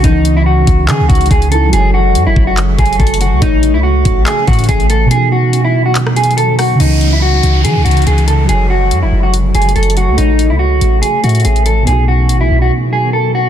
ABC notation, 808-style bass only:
X:1
M:4/4
L:1/16
Q:1/4=142
K:C#m
V:1 name="808-style bass" clef=bass
C,,6 C,,2 E, C,, C,,2 C,,4 | F,,,4 F,, F,,, F,,,4 F,,,2 F,,,3 C,, | A,,,3 C,,3 A,,,2 z2 A,,2 A,,,4 | z16 |
C,,6 C,,2 E, C,, C,,2 C,,4 | F,,,4 F,, F,,, F,,,4 F,,,2 F,,,3 C,, | A,,,3 C,,3 A,,,2 z2 A,,2 A,,,4 | B,,,4 A,,, B,,, B,,,2 z8 |]